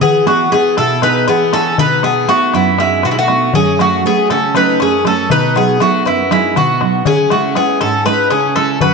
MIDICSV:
0, 0, Header, 1, 5, 480
1, 0, Start_track
1, 0, Key_signature, 4, "major"
1, 0, Tempo, 502934
1, 9, Time_signature, 7, 3, 24, 8
1, 8530, End_track
2, 0, Start_track
2, 0, Title_t, "Bouzouki"
2, 0, Program_c, 0, 25
2, 13, Note_on_c, 0, 68, 98
2, 253, Note_off_c, 0, 68, 0
2, 257, Note_on_c, 0, 66, 84
2, 478, Note_off_c, 0, 66, 0
2, 496, Note_on_c, 0, 68, 95
2, 718, Note_off_c, 0, 68, 0
2, 741, Note_on_c, 0, 69, 100
2, 980, Note_off_c, 0, 69, 0
2, 984, Note_on_c, 0, 71, 105
2, 1216, Note_off_c, 0, 71, 0
2, 1219, Note_on_c, 0, 68, 86
2, 1460, Note_off_c, 0, 68, 0
2, 1464, Note_on_c, 0, 69, 106
2, 1685, Note_off_c, 0, 69, 0
2, 1710, Note_on_c, 0, 71, 110
2, 1943, Note_off_c, 0, 71, 0
2, 1947, Note_on_c, 0, 68, 88
2, 2182, Note_on_c, 0, 66, 95
2, 2190, Note_off_c, 0, 68, 0
2, 2425, Note_off_c, 0, 66, 0
2, 2429, Note_on_c, 0, 64, 88
2, 2648, Note_off_c, 0, 64, 0
2, 2672, Note_on_c, 0, 64, 92
2, 2907, Note_off_c, 0, 64, 0
2, 2910, Note_on_c, 0, 66, 84
2, 2964, Note_off_c, 0, 66, 0
2, 2972, Note_on_c, 0, 64, 76
2, 3030, Note_off_c, 0, 64, 0
2, 3041, Note_on_c, 0, 66, 101
2, 3365, Note_off_c, 0, 66, 0
2, 3388, Note_on_c, 0, 68, 103
2, 3609, Note_off_c, 0, 68, 0
2, 3636, Note_on_c, 0, 66, 92
2, 3853, Note_off_c, 0, 66, 0
2, 3882, Note_on_c, 0, 68, 98
2, 4104, Note_off_c, 0, 68, 0
2, 4108, Note_on_c, 0, 69, 92
2, 4328, Note_off_c, 0, 69, 0
2, 4358, Note_on_c, 0, 71, 100
2, 4574, Note_off_c, 0, 71, 0
2, 4599, Note_on_c, 0, 68, 89
2, 4814, Note_off_c, 0, 68, 0
2, 4838, Note_on_c, 0, 69, 95
2, 5054, Note_off_c, 0, 69, 0
2, 5072, Note_on_c, 0, 71, 98
2, 5290, Note_off_c, 0, 71, 0
2, 5317, Note_on_c, 0, 68, 92
2, 5533, Note_off_c, 0, 68, 0
2, 5551, Note_on_c, 0, 66, 85
2, 5769, Note_off_c, 0, 66, 0
2, 5794, Note_on_c, 0, 64, 86
2, 6011, Note_off_c, 0, 64, 0
2, 6033, Note_on_c, 0, 64, 85
2, 6250, Note_off_c, 0, 64, 0
2, 6272, Note_on_c, 0, 66, 88
2, 6711, Note_off_c, 0, 66, 0
2, 6746, Note_on_c, 0, 68, 95
2, 6983, Note_on_c, 0, 66, 82
2, 6988, Note_off_c, 0, 68, 0
2, 7218, Note_on_c, 0, 68, 91
2, 7226, Note_off_c, 0, 66, 0
2, 7439, Note_off_c, 0, 68, 0
2, 7453, Note_on_c, 0, 69, 91
2, 7676, Note_off_c, 0, 69, 0
2, 7689, Note_on_c, 0, 71, 103
2, 7922, Note_off_c, 0, 71, 0
2, 7925, Note_on_c, 0, 68, 88
2, 8150, Note_off_c, 0, 68, 0
2, 8166, Note_on_c, 0, 69, 92
2, 8390, Note_off_c, 0, 69, 0
2, 8411, Note_on_c, 0, 71, 96
2, 8530, Note_off_c, 0, 71, 0
2, 8530, End_track
3, 0, Start_track
3, 0, Title_t, "Bouzouki"
3, 0, Program_c, 1, 25
3, 22, Note_on_c, 1, 59, 88
3, 240, Note_off_c, 1, 59, 0
3, 266, Note_on_c, 1, 57, 71
3, 483, Note_off_c, 1, 57, 0
3, 515, Note_on_c, 1, 59, 83
3, 729, Note_off_c, 1, 59, 0
3, 748, Note_on_c, 1, 64, 86
3, 966, Note_off_c, 1, 64, 0
3, 986, Note_on_c, 1, 63, 92
3, 1205, Note_off_c, 1, 63, 0
3, 1233, Note_on_c, 1, 59, 87
3, 1449, Note_off_c, 1, 59, 0
3, 1473, Note_on_c, 1, 61, 74
3, 1689, Note_off_c, 1, 61, 0
3, 1716, Note_on_c, 1, 63, 91
3, 1931, Note_off_c, 1, 63, 0
3, 1951, Note_on_c, 1, 59, 78
3, 2169, Note_off_c, 1, 59, 0
3, 2186, Note_on_c, 1, 57, 84
3, 2407, Note_off_c, 1, 57, 0
3, 2440, Note_on_c, 1, 59, 78
3, 2655, Note_off_c, 1, 59, 0
3, 2669, Note_on_c, 1, 56, 80
3, 2889, Note_off_c, 1, 56, 0
3, 2916, Note_on_c, 1, 59, 76
3, 2966, Note_on_c, 1, 56, 66
3, 2967, Note_off_c, 1, 59, 0
3, 3023, Note_off_c, 1, 56, 0
3, 3039, Note_on_c, 1, 57, 85
3, 3364, Note_off_c, 1, 57, 0
3, 3387, Note_on_c, 1, 61, 86
3, 3608, Note_off_c, 1, 61, 0
3, 3625, Note_on_c, 1, 57, 71
3, 3847, Note_off_c, 1, 57, 0
3, 3873, Note_on_c, 1, 59, 79
3, 4091, Note_off_c, 1, 59, 0
3, 4120, Note_on_c, 1, 61, 81
3, 4335, Note_off_c, 1, 61, 0
3, 4348, Note_on_c, 1, 63, 88
3, 4568, Note_off_c, 1, 63, 0
3, 4580, Note_on_c, 1, 61, 81
3, 4804, Note_off_c, 1, 61, 0
3, 4833, Note_on_c, 1, 61, 73
3, 5051, Note_off_c, 1, 61, 0
3, 5076, Note_on_c, 1, 63, 88
3, 5293, Note_off_c, 1, 63, 0
3, 5302, Note_on_c, 1, 59, 71
3, 5525, Note_off_c, 1, 59, 0
3, 5538, Note_on_c, 1, 57, 75
3, 5763, Note_off_c, 1, 57, 0
3, 5778, Note_on_c, 1, 59, 72
3, 6002, Note_off_c, 1, 59, 0
3, 6027, Note_on_c, 1, 56, 73
3, 6246, Note_off_c, 1, 56, 0
3, 6268, Note_on_c, 1, 59, 76
3, 6709, Note_off_c, 1, 59, 0
3, 6737, Note_on_c, 1, 61, 89
3, 6960, Note_off_c, 1, 61, 0
3, 6979, Note_on_c, 1, 57, 68
3, 7200, Note_off_c, 1, 57, 0
3, 7221, Note_on_c, 1, 59, 79
3, 7441, Note_off_c, 1, 59, 0
3, 7459, Note_on_c, 1, 61, 74
3, 7679, Note_off_c, 1, 61, 0
3, 7696, Note_on_c, 1, 63, 79
3, 7917, Note_off_c, 1, 63, 0
3, 7935, Note_on_c, 1, 61, 79
3, 8155, Note_off_c, 1, 61, 0
3, 8177, Note_on_c, 1, 61, 74
3, 8396, Note_off_c, 1, 61, 0
3, 8417, Note_on_c, 1, 66, 92
3, 8530, Note_off_c, 1, 66, 0
3, 8530, End_track
4, 0, Start_track
4, 0, Title_t, "Steel-string acoustic guitar"
4, 0, Program_c, 2, 25
4, 9, Note_on_c, 2, 52, 69
4, 249, Note_on_c, 2, 59, 54
4, 254, Note_on_c, 2, 64, 47
4, 258, Note_on_c, 2, 68, 58
4, 478, Note_off_c, 2, 52, 0
4, 479, Note_off_c, 2, 59, 0
4, 486, Note_off_c, 2, 64, 0
4, 487, Note_off_c, 2, 68, 0
4, 490, Note_on_c, 2, 59, 51
4, 495, Note_on_c, 2, 64, 47
4, 501, Note_on_c, 2, 68, 59
4, 739, Note_on_c, 2, 47, 66
4, 877, Note_off_c, 2, 59, 0
4, 881, Note_off_c, 2, 64, 0
4, 882, Note_off_c, 2, 68, 0
4, 973, Note_on_c, 2, 59, 50
4, 980, Note_on_c, 2, 64, 45
4, 982, Note_on_c, 2, 68, 59
4, 1204, Note_off_c, 2, 47, 0
4, 1220, Note_on_c, 2, 52, 65
4, 1359, Note_off_c, 2, 59, 0
4, 1364, Note_off_c, 2, 64, 0
4, 1364, Note_off_c, 2, 68, 0
4, 1454, Note_on_c, 2, 59, 47
4, 1457, Note_on_c, 2, 64, 45
4, 1462, Note_on_c, 2, 68, 61
4, 1648, Note_off_c, 2, 59, 0
4, 1650, Note_off_c, 2, 64, 0
4, 1651, Note_off_c, 2, 68, 0
4, 1686, Note_off_c, 2, 52, 0
4, 1705, Note_on_c, 2, 47, 74
4, 1937, Note_on_c, 2, 59, 56
4, 1942, Note_on_c, 2, 63, 45
4, 1949, Note_on_c, 2, 66, 56
4, 2169, Note_off_c, 2, 47, 0
4, 2170, Note_off_c, 2, 59, 0
4, 2172, Note_off_c, 2, 63, 0
4, 2177, Note_off_c, 2, 66, 0
4, 2180, Note_on_c, 2, 59, 51
4, 2186, Note_on_c, 2, 63, 50
4, 2189, Note_on_c, 2, 66, 58
4, 2420, Note_on_c, 2, 42, 75
4, 2566, Note_off_c, 2, 59, 0
4, 2567, Note_off_c, 2, 63, 0
4, 2570, Note_off_c, 2, 66, 0
4, 2659, Note_on_c, 2, 59, 53
4, 2664, Note_on_c, 2, 63, 46
4, 2668, Note_on_c, 2, 66, 54
4, 2887, Note_off_c, 2, 42, 0
4, 2903, Note_on_c, 2, 47, 67
4, 3045, Note_off_c, 2, 59, 0
4, 3047, Note_off_c, 2, 63, 0
4, 3050, Note_off_c, 2, 66, 0
4, 3140, Note_on_c, 2, 59, 53
4, 3145, Note_on_c, 2, 66, 54
4, 3146, Note_on_c, 2, 63, 44
4, 3333, Note_off_c, 2, 59, 0
4, 3335, Note_off_c, 2, 63, 0
4, 3336, Note_off_c, 2, 66, 0
4, 3369, Note_off_c, 2, 47, 0
4, 3376, Note_on_c, 2, 42, 74
4, 3619, Note_on_c, 2, 54, 52
4, 3624, Note_on_c, 2, 57, 47
4, 3624, Note_on_c, 2, 61, 63
4, 3843, Note_off_c, 2, 54, 0
4, 3845, Note_off_c, 2, 42, 0
4, 3848, Note_off_c, 2, 57, 0
4, 3851, Note_off_c, 2, 61, 0
4, 3854, Note_on_c, 2, 54, 51
4, 3858, Note_on_c, 2, 57, 46
4, 3863, Note_on_c, 2, 61, 57
4, 4104, Note_on_c, 2, 49, 77
4, 4242, Note_off_c, 2, 54, 0
4, 4245, Note_off_c, 2, 57, 0
4, 4247, Note_off_c, 2, 61, 0
4, 4333, Note_on_c, 2, 54, 53
4, 4339, Note_on_c, 2, 57, 45
4, 4346, Note_on_c, 2, 61, 55
4, 4569, Note_off_c, 2, 49, 0
4, 4582, Note_on_c, 2, 42, 65
4, 4720, Note_off_c, 2, 54, 0
4, 4725, Note_off_c, 2, 57, 0
4, 4727, Note_off_c, 2, 61, 0
4, 4813, Note_on_c, 2, 54, 54
4, 4819, Note_on_c, 2, 57, 43
4, 4826, Note_on_c, 2, 61, 58
4, 5009, Note_off_c, 2, 54, 0
4, 5012, Note_off_c, 2, 57, 0
4, 5014, Note_off_c, 2, 61, 0
4, 5047, Note_off_c, 2, 42, 0
4, 5063, Note_on_c, 2, 47, 77
4, 5295, Note_on_c, 2, 54, 51
4, 5300, Note_on_c, 2, 59, 46
4, 5304, Note_on_c, 2, 63, 54
4, 5527, Note_off_c, 2, 47, 0
4, 5531, Note_off_c, 2, 54, 0
4, 5534, Note_off_c, 2, 59, 0
4, 5537, Note_off_c, 2, 63, 0
4, 5542, Note_on_c, 2, 54, 47
4, 5547, Note_on_c, 2, 59, 46
4, 5548, Note_on_c, 2, 63, 56
4, 5784, Note_on_c, 2, 42, 63
4, 5925, Note_off_c, 2, 54, 0
4, 5927, Note_off_c, 2, 59, 0
4, 5929, Note_off_c, 2, 63, 0
4, 6019, Note_on_c, 2, 54, 53
4, 6025, Note_on_c, 2, 59, 45
4, 6025, Note_on_c, 2, 63, 59
4, 6247, Note_off_c, 2, 42, 0
4, 6259, Note_on_c, 2, 47, 64
4, 6403, Note_off_c, 2, 54, 0
4, 6404, Note_off_c, 2, 59, 0
4, 6406, Note_off_c, 2, 63, 0
4, 6498, Note_on_c, 2, 54, 46
4, 6503, Note_on_c, 2, 59, 46
4, 6508, Note_on_c, 2, 63, 55
4, 6690, Note_off_c, 2, 54, 0
4, 6692, Note_off_c, 2, 59, 0
4, 6696, Note_off_c, 2, 63, 0
4, 6723, Note_off_c, 2, 47, 0
4, 6735, Note_on_c, 2, 49, 68
4, 6974, Note_on_c, 2, 56, 53
4, 6980, Note_on_c, 2, 61, 48
4, 6986, Note_on_c, 2, 64, 59
4, 7200, Note_off_c, 2, 49, 0
4, 7201, Note_off_c, 2, 56, 0
4, 7203, Note_off_c, 2, 61, 0
4, 7206, Note_off_c, 2, 64, 0
4, 7212, Note_on_c, 2, 56, 50
4, 7216, Note_on_c, 2, 61, 47
4, 7218, Note_on_c, 2, 64, 55
4, 7457, Note_on_c, 2, 44, 66
4, 7596, Note_off_c, 2, 56, 0
4, 7597, Note_off_c, 2, 61, 0
4, 7599, Note_off_c, 2, 64, 0
4, 7690, Note_on_c, 2, 56, 48
4, 7695, Note_on_c, 2, 61, 47
4, 7697, Note_on_c, 2, 64, 54
4, 7919, Note_off_c, 2, 44, 0
4, 7932, Note_on_c, 2, 49, 71
4, 8073, Note_off_c, 2, 56, 0
4, 8074, Note_off_c, 2, 61, 0
4, 8077, Note_off_c, 2, 64, 0
4, 8166, Note_on_c, 2, 56, 49
4, 8170, Note_on_c, 2, 61, 47
4, 8177, Note_on_c, 2, 64, 57
4, 8359, Note_off_c, 2, 56, 0
4, 8362, Note_off_c, 2, 61, 0
4, 8363, Note_off_c, 2, 64, 0
4, 8394, Note_off_c, 2, 49, 0
4, 8406, Note_on_c, 2, 42, 67
4, 8530, Note_off_c, 2, 42, 0
4, 8530, End_track
5, 0, Start_track
5, 0, Title_t, "Darbuka"
5, 12, Note_on_c, 9, 64, 83
5, 107, Note_off_c, 9, 64, 0
5, 255, Note_on_c, 9, 63, 72
5, 351, Note_off_c, 9, 63, 0
5, 504, Note_on_c, 9, 63, 72
5, 599, Note_off_c, 9, 63, 0
5, 624, Note_on_c, 9, 63, 27
5, 720, Note_off_c, 9, 63, 0
5, 736, Note_on_c, 9, 63, 64
5, 831, Note_off_c, 9, 63, 0
5, 974, Note_on_c, 9, 63, 82
5, 1070, Note_off_c, 9, 63, 0
5, 1217, Note_on_c, 9, 63, 84
5, 1312, Note_off_c, 9, 63, 0
5, 1338, Note_on_c, 9, 63, 27
5, 1434, Note_off_c, 9, 63, 0
5, 1459, Note_on_c, 9, 63, 75
5, 1554, Note_off_c, 9, 63, 0
5, 1701, Note_on_c, 9, 64, 107
5, 1796, Note_off_c, 9, 64, 0
5, 1939, Note_on_c, 9, 63, 83
5, 2034, Note_off_c, 9, 63, 0
5, 2181, Note_on_c, 9, 63, 80
5, 2277, Note_off_c, 9, 63, 0
5, 2300, Note_on_c, 9, 63, 31
5, 2395, Note_off_c, 9, 63, 0
5, 2420, Note_on_c, 9, 63, 74
5, 2516, Note_off_c, 9, 63, 0
5, 2657, Note_on_c, 9, 63, 81
5, 2752, Note_off_c, 9, 63, 0
5, 2894, Note_on_c, 9, 63, 82
5, 2990, Note_off_c, 9, 63, 0
5, 3131, Note_on_c, 9, 63, 74
5, 3226, Note_off_c, 9, 63, 0
5, 3374, Note_on_c, 9, 64, 101
5, 3469, Note_off_c, 9, 64, 0
5, 3620, Note_on_c, 9, 63, 80
5, 3715, Note_off_c, 9, 63, 0
5, 3981, Note_on_c, 9, 63, 28
5, 4076, Note_off_c, 9, 63, 0
5, 4103, Note_on_c, 9, 63, 70
5, 4198, Note_off_c, 9, 63, 0
5, 4340, Note_on_c, 9, 63, 78
5, 4435, Note_off_c, 9, 63, 0
5, 4579, Note_on_c, 9, 63, 76
5, 4675, Note_off_c, 9, 63, 0
5, 4696, Note_on_c, 9, 63, 27
5, 4791, Note_off_c, 9, 63, 0
5, 4820, Note_on_c, 9, 63, 74
5, 4915, Note_off_c, 9, 63, 0
5, 5057, Note_on_c, 9, 64, 105
5, 5153, Note_off_c, 9, 64, 0
5, 5187, Note_on_c, 9, 63, 28
5, 5282, Note_off_c, 9, 63, 0
5, 5307, Note_on_c, 9, 63, 81
5, 5402, Note_off_c, 9, 63, 0
5, 5539, Note_on_c, 9, 63, 75
5, 5634, Note_off_c, 9, 63, 0
5, 5785, Note_on_c, 9, 63, 72
5, 5881, Note_off_c, 9, 63, 0
5, 6023, Note_on_c, 9, 63, 80
5, 6118, Note_off_c, 9, 63, 0
5, 6263, Note_on_c, 9, 63, 83
5, 6263, Note_on_c, 9, 64, 78
5, 6359, Note_off_c, 9, 63, 0
5, 6359, Note_off_c, 9, 64, 0
5, 6499, Note_on_c, 9, 63, 74
5, 6594, Note_off_c, 9, 63, 0
5, 6617, Note_on_c, 9, 63, 28
5, 6713, Note_off_c, 9, 63, 0
5, 6732, Note_on_c, 9, 64, 104
5, 6827, Note_off_c, 9, 64, 0
5, 6971, Note_on_c, 9, 63, 87
5, 7066, Note_off_c, 9, 63, 0
5, 7210, Note_on_c, 9, 63, 75
5, 7305, Note_off_c, 9, 63, 0
5, 7338, Note_on_c, 9, 63, 28
5, 7434, Note_off_c, 9, 63, 0
5, 7450, Note_on_c, 9, 63, 75
5, 7546, Note_off_c, 9, 63, 0
5, 7690, Note_on_c, 9, 63, 80
5, 7786, Note_off_c, 9, 63, 0
5, 7927, Note_on_c, 9, 63, 81
5, 8022, Note_off_c, 9, 63, 0
5, 8053, Note_on_c, 9, 63, 29
5, 8148, Note_off_c, 9, 63, 0
5, 8168, Note_on_c, 9, 63, 73
5, 8263, Note_off_c, 9, 63, 0
5, 8403, Note_on_c, 9, 64, 98
5, 8499, Note_off_c, 9, 64, 0
5, 8530, End_track
0, 0, End_of_file